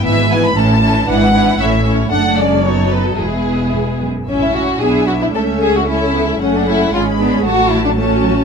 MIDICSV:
0, 0, Header, 1, 6, 480
1, 0, Start_track
1, 0, Key_signature, 3, "major"
1, 0, Tempo, 519481
1, 38, Time_signature, 2, 2, 24, 8
1, 2437, Tempo, 545455
1, 4357, Tempo, 525855
1, 7663, End_track
2, 0, Start_track
2, 0, Title_t, "Violin section"
2, 0, Program_c, 0, 48
2, 36, Note_on_c, 0, 76, 83
2, 272, Note_off_c, 0, 76, 0
2, 276, Note_on_c, 0, 80, 75
2, 396, Note_off_c, 0, 80, 0
2, 410, Note_on_c, 0, 83, 73
2, 522, Note_on_c, 0, 81, 80
2, 523, Note_off_c, 0, 83, 0
2, 997, Note_off_c, 0, 81, 0
2, 1004, Note_on_c, 0, 78, 86
2, 1467, Note_off_c, 0, 78, 0
2, 1481, Note_on_c, 0, 76, 64
2, 1716, Note_off_c, 0, 76, 0
2, 1955, Note_on_c, 0, 78, 82
2, 2178, Note_off_c, 0, 78, 0
2, 2191, Note_on_c, 0, 74, 71
2, 2438, Note_off_c, 0, 74, 0
2, 2449, Note_on_c, 0, 73, 61
2, 2681, Note_off_c, 0, 73, 0
2, 2683, Note_on_c, 0, 71, 55
2, 2799, Note_off_c, 0, 71, 0
2, 2804, Note_on_c, 0, 69, 51
2, 2915, Note_on_c, 0, 68, 52
2, 2921, Note_off_c, 0, 69, 0
2, 3642, Note_off_c, 0, 68, 0
2, 3883, Note_on_c, 0, 76, 44
2, 4323, Note_off_c, 0, 76, 0
2, 4352, Note_on_c, 0, 76, 42
2, 4826, Note_off_c, 0, 76, 0
2, 4837, Note_on_c, 0, 76, 44
2, 5311, Note_off_c, 0, 76, 0
2, 5322, Note_on_c, 0, 76, 45
2, 5799, Note_off_c, 0, 76, 0
2, 5811, Note_on_c, 0, 78, 50
2, 6283, Note_off_c, 0, 78, 0
2, 6300, Note_on_c, 0, 83, 53
2, 6776, Note_off_c, 0, 83, 0
2, 6781, Note_on_c, 0, 81, 53
2, 7238, Note_off_c, 0, 81, 0
2, 7249, Note_on_c, 0, 81, 53
2, 7663, Note_off_c, 0, 81, 0
2, 7663, End_track
3, 0, Start_track
3, 0, Title_t, "Violin section"
3, 0, Program_c, 1, 48
3, 48, Note_on_c, 1, 64, 49
3, 49, Note_on_c, 1, 71, 50
3, 278, Note_off_c, 1, 64, 0
3, 278, Note_off_c, 1, 71, 0
3, 293, Note_on_c, 1, 64, 44
3, 295, Note_on_c, 1, 71, 52
3, 516, Note_off_c, 1, 64, 0
3, 521, Note_off_c, 1, 71, 0
3, 525, Note_on_c, 1, 69, 53
3, 527, Note_on_c, 1, 64, 51
3, 755, Note_off_c, 1, 69, 0
3, 757, Note_off_c, 1, 64, 0
3, 766, Note_on_c, 1, 64, 50
3, 767, Note_on_c, 1, 69, 49
3, 993, Note_off_c, 1, 64, 0
3, 996, Note_off_c, 1, 69, 0
3, 1004, Note_on_c, 1, 64, 48
3, 1010, Note_on_c, 1, 71, 51
3, 1233, Note_off_c, 1, 64, 0
3, 1236, Note_off_c, 1, 71, 0
3, 1248, Note_on_c, 1, 64, 53
3, 1248, Note_on_c, 1, 71, 46
3, 1475, Note_off_c, 1, 64, 0
3, 1475, Note_off_c, 1, 71, 0
3, 1485, Note_on_c, 1, 64, 46
3, 1492, Note_on_c, 1, 73, 43
3, 1703, Note_off_c, 1, 64, 0
3, 1703, Note_off_c, 1, 73, 0
3, 1714, Note_on_c, 1, 73, 45
3, 1715, Note_on_c, 1, 64, 40
3, 1947, Note_off_c, 1, 64, 0
3, 1947, Note_off_c, 1, 73, 0
3, 1956, Note_on_c, 1, 69, 47
3, 1958, Note_on_c, 1, 62, 46
3, 2407, Note_off_c, 1, 69, 0
3, 2408, Note_off_c, 1, 62, 0
3, 2437, Note_on_c, 1, 63, 43
3, 2438, Note_on_c, 1, 69, 47
3, 2906, Note_off_c, 1, 63, 0
3, 2907, Note_off_c, 1, 69, 0
3, 2917, Note_on_c, 1, 64, 38
3, 2918, Note_on_c, 1, 68, 38
3, 3688, Note_off_c, 1, 68, 0
3, 3703, Note_off_c, 1, 64, 0
3, 3889, Note_on_c, 1, 61, 62
3, 3998, Note_off_c, 1, 61, 0
3, 4005, Note_on_c, 1, 64, 57
3, 4116, Note_on_c, 1, 66, 57
3, 4123, Note_off_c, 1, 64, 0
3, 4351, Note_on_c, 1, 68, 59
3, 4354, Note_off_c, 1, 66, 0
3, 4587, Note_on_c, 1, 66, 52
3, 4596, Note_off_c, 1, 68, 0
3, 4638, Note_off_c, 1, 66, 0
3, 4719, Note_on_c, 1, 64, 50
3, 4768, Note_off_c, 1, 64, 0
3, 4840, Note_on_c, 1, 69, 56
3, 4913, Note_off_c, 1, 69, 0
3, 5087, Note_on_c, 1, 68, 60
3, 5203, Note_off_c, 1, 68, 0
3, 5210, Note_on_c, 1, 66, 53
3, 5325, Note_on_c, 1, 64, 63
3, 5328, Note_off_c, 1, 66, 0
3, 5800, Note_off_c, 1, 64, 0
3, 5809, Note_on_c, 1, 61, 61
3, 5928, Note_off_c, 1, 61, 0
3, 5941, Note_on_c, 1, 62, 61
3, 6055, Note_on_c, 1, 64, 62
3, 6056, Note_off_c, 1, 62, 0
3, 6289, Note_off_c, 1, 64, 0
3, 6294, Note_on_c, 1, 65, 64
3, 6367, Note_off_c, 1, 65, 0
3, 6530, Note_on_c, 1, 62, 58
3, 6649, Note_off_c, 1, 62, 0
3, 6664, Note_on_c, 1, 61, 54
3, 6764, Note_on_c, 1, 66, 67
3, 6778, Note_off_c, 1, 61, 0
3, 6998, Note_on_c, 1, 64, 66
3, 7001, Note_off_c, 1, 66, 0
3, 7119, Note_on_c, 1, 62, 62
3, 7122, Note_off_c, 1, 64, 0
3, 7168, Note_off_c, 1, 62, 0
3, 7230, Note_on_c, 1, 61, 71
3, 7663, Note_off_c, 1, 61, 0
3, 7663, End_track
4, 0, Start_track
4, 0, Title_t, "Viola section"
4, 0, Program_c, 2, 48
4, 26, Note_on_c, 2, 52, 54
4, 28, Note_on_c, 2, 59, 55
4, 258, Note_off_c, 2, 52, 0
4, 261, Note_off_c, 2, 59, 0
4, 270, Note_on_c, 2, 52, 48
4, 273, Note_on_c, 2, 59, 50
4, 492, Note_off_c, 2, 52, 0
4, 503, Note_on_c, 2, 52, 45
4, 503, Note_on_c, 2, 61, 50
4, 510, Note_off_c, 2, 59, 0
4, 737, Note_off_c, 2, 52, 0
4, 737, Note_off_c, 2, 61, 0
4, 748, Note_on_c, 2, 52, 51
4, 748, Note_on_c, 2, 61, 51
4, 976, Note_off_c, 2, 52, 0
4, 986, Note_off_c, 2, 61, 0
4, 987, Note_on_c, 2, 52, 62
4, 989, Note_on_c, 2, 62, 58
4, 1216, Note_off_c, 2, 52, 0
4, 1216, Note_off_c, 2, 62, 0
4, 1227, Note_on_c, 2, 52, 50
4, 1228, Note_on_c, 2, 62, 51
4, 1464, Note_off_c, 2, 52, 0
4, 1465, Note_off_c, 2, 62, 0
4, 1468, Note_on_c, 2, 61, 49
4, 1470, Note_on_c, 2, 57, 50
4, 1695, Note_off_c, 2, 57, 0
4, 1695, Note_off_c, 2, 61, 0
4, 1706, Note_on_c, 2, 57, 47
4, 1706, Note_on_c, 2, 61, 47
4, 1935, Note_off_c, 2, 57, 0
4, 1943, Note_off_c, 2, 61, 0
4, 1946, Note_on_c, 2, 57, 52
4, 1947, Note_on_c, 2, 62, 49
4, 2021, Note_off_c, 2, 62, 0
4, 2173, Note_off_c, 2, 57, 0
4, 2195, Note_on_c, 2, 56, 48
4, 2196, Note_on_c, 2, 61, 49
4, 2435, Note_off_c, 2, 61, 0
4, 2440, Note_off_c, 2, 56, 0
4, 2441, Note_on_c, 2, 54, 42
4, 2442, Note_on_c, 2, 59, 43
4, 2911, Note_off_c, 2, 59, 0
4, 2918, Note_off_c, 2, 54, 0
4, 2921, Note_on_c, 2, 56, 47
4, 2922, Note_on_c, 2, 59, 43
4, 3690, Note_off_c, 2, 59, 0
4, 3705, Note_off_c, 2, 56, 0
4, 3880, Note_on_c, 2, 64, 43
4, 3884, Note_on_c, 2, 61, 47
4, 4322, Note_off_c, 2, 64, 0
4, 4324, Note_off_c, 2, 61, 0
4, 4364, Note_on_c, 2, 62, 42
4, 4364, Note_on_c, 2, 64, 40
4, 4834, Note_off_c, 2, 64, 0
4, 4841, Note_on_c, 2, 69, 43
4, 4843, Note_on_c, 2, 61, 47
4, 4844, Note_off_c, 2, 62, 0
4, 5313, Note_off_c, 2, 61, 0
4, 5313, Note_off_c, 2, 69, 0
4, 5324, Note_on_c, 2, 61, 43
4, 5324, Note_on_c, 2, 69, 40
4, 5798, Note_off_c, 2, 69, 0
4, 5800, Note_off_c, 2, 61, 0
4, 5809, Note_on_c, 2, 69, 48
4, 5813, Note_on_c, 2, 61, 50
4, 6281, Note_off_c, 2, 61, 0
4, 6282, Note_off_c, 2, 69, 0
4, 6292, Note_on_c, 2, 61, 50
4, 6292, Note_on_c, 2, 68, 47
4, 6528, Note_off_c, 2, 61, 0
4, 6531, Note_on_c, 2, 59, 52
4, 6762, Note_off_c, 2, 68, 0
4, 6767, Note_off_c, 2, 59, 0
4, 6776, Note_on_c, 2, 57, 53
4, 6777, Note_on_c, 2, 66, 53
4, 7235, Note_off_c, 2, 57, 0
4, 7235, Note_off_c, 2, 66, 0
4, 7246, Note_on_c, 2, 57, 53
4, 7246, Note_on_c, 2, 66, 50
4, 7663, Note_off_c, 2, 57, 0
4, 7663, Note_off_c, 2, 66, 0
4, 7663, End_track
5, 0, Start_track
5, 0, Title_t, "Cello section"
5, 0, Program_c, 3, 48
5, 35, Note_on_c, 3, 44, 63
5, 459, Note_off_c, 3, 44, 0
5, 511, Note_on_c, 3, 45, 57
5, 936, Note_off_c, 3, 45, 0
5, 991, Note_on_c, 3, 44, 66
5, 1414, Note_off_c, 3, 44, 0
5, 1472, Note_on_c, 3, 45, 56
5, 1894, Note_off_c, 3, 45, 0
5, 1951, Note_on_c, 3, 42, 52
5, 2882, Note_off_c, 3, 42, 0
5, 2916, Note_on_c, 3, 40, 44
5, 3352, Note_off_c, 3, 40, 0
5, 3398, Note_on_c, 3, 40, 39
5, 3468, Note_off_c, 3, 40, 0
5, 3639, Note_on_c, 3, 42, 44
5, 3878, Note_off_c, 3, 42, 0
5, 4357, Note_on_c, 3, 59, 52
5, 4806, Note_off_c, 3, 59, 0
5, 4839, Note_on_c, 3, 57, 48
5, 5323, Note_on_c, 3, 61, 50
5, 5324, Note_off_c, 3, 57, 0
5, 5566, Note_off_c, 3, 61, 0
5, 5568, Note_on_c, 3, 59, 53
5, 5641, Note_off_c, 3, 59, 0
5, 5811, Note_on_c, 3, 57, 51
5, 6284, Note_off_c, 3, 57, 0
5, 6288, Note_on_c, 3, 56, 54
5, 6760, Note_off_c, 3, 56, 0
5, 6776, Note_on_c, 3, 54, 62
5, 7246, Note_on_c, 3, 57, 57
5, 7247, Note_off_c, 3, 54, 0
5, 7482, Note_off_c, 3, 57, 0
5, 7483, Note_on_c, 3, 54, 60
5, 7556, Note_off_c, 3, 54, 0
5, 7663, End_track
6, 0, Start_track
6, 0, Title_t, "Double bass section"
6, 0, Program_c, 4, 48
6, 33, Note_on_c, 4, 32, 55
6, 458, Note_off_c, 4, 32, 0
6, 510, Note_on_c, 4, 33, 59
6, 935, Note_off_c, 4, 33, 0
6, 993, Note_on_c, 4, 32, 61
6, 1415, Note_off_c, 4, 32, 0
6, 1467, Note_on_c, 4, 33, 61
6, 1891, Note_off_c, 4, 33, 0
6, 1949, Note_on_c, 4, 30, 55
6, 2881, Note_off_c, 4, 30, 0
6, 2921, Note_on_c, 4, 28, 44
6, 3705, Note_off_c, 4, 28, 0
6, 3883, Note_on_c, 4, 33, 44
6, 4323, Note_off_c, 4, 33, 0
6, 4360, Note_on_c, 4, 35, 44
6, 4841, Note_on_c, 4, 37, 42
6, 4842, Note_off_c, 4, 35, 0
6, 5791, Note_off_c, 4, 37, 0
6, 5805, Note_on_c, 4, 30, 51
6, 6280, Note_off_c, 4, 30, 0
6, 6289, Note_on_c, 4, 32, 52
6, 6761, Note_off_c, 4, 32, 0
6, 6767, Note_on_c, 4, 33, 54
6, 7663, Note_off_c, 4, 33, 0
6, 7663, End_track
0, 0, End_of_file